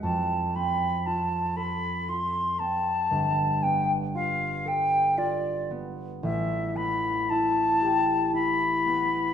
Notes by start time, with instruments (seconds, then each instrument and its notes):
0.03 harp F2, flute A5
0.55 harp C4, flute B5
1.06 harp F4, flute A5
1.56 harp A4, flute B5
2.08 harp F4, flute C6
2.58 harp C4, flute A5
3.11 harp G1
3.62 harp B3, flute G5
4.15 harp F4, flute F5
4.65 harp A4, flute G5
5.17 harp F4, flute D5
5.70 harp B3
6.23 harp A1, flute E5
6.76 harp B3, flute B5
7.29 harp E4, flute A5
7.82 harp G4
8.34 harp E4, flute B5
8.86 harp B3